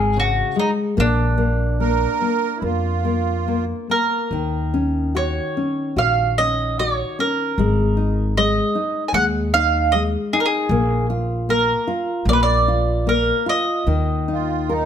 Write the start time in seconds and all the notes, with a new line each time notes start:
Already playing: G#1 G#3 G#4
0.17 C#3 F#4
0.56 G#3 D#4
0.97 A#1 A#3 D4
1.38 A#3
1.80 A#3 A#4
2.21 A#3
2.57 E4
2.62 F2 A#3 F4
3.05 A#3
3.48 A#3
3.90 A#3 A#4
4.31 D#2 D#3
4.74 C#4
5.15 F#4 C#5
5.57 C#4
5.96 A#1 F#4 F5
6.38 C#4 D#5
6.79 F#4 C#5
7.19 C#4 A#4
7.58 G#1 G#3
7.97 D#4
8.37 G#3 D#5
8.75 D#4
9.08 G#5
9.13 D#2 G#3 F#5
9.54 D#4 F5
9.92 G#3 D#5
10.33 D#4 G#4
10.40 A#4
10.46 G#4
10.69 A#1 A#3
11.10 F4
11.49 A#3 A#4
11.87 F4
12.25 A#1 A#3 D5
12.33 B4
12.43 D5
12.68 F4
13.07 A#3 A#4
13.46 F4 D#5
13.87 D#2 D#3
14.28 D#4 F4
14.69 D#4 A#4